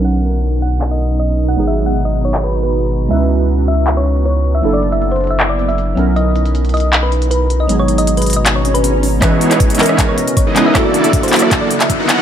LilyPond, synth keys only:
\new Staff \with { instrumentName = "Synth keys" } { \time 4/4 \key cis \dorian \tempo 4 = 157 <fis b cis' dis' ais'>1 | <fis gis b dis' gis'>1 | <gis cis' dis' e' b'>1 | <fis ais d' e' a'>2.~ <fis ais d' e' a'>8 <fis b cis' dis' ais'>8~ |
<fis b cis' dis' ais'>1 | <fis gis b dis' gis'>1 | <e gis cis' b' dis''>4. <e gis cis' ais' dis''>2 <gis cis' dis' e' b'>8 | <ais d' e' fis' a'>4. <ais d' e' fis' a'>2 r8 | }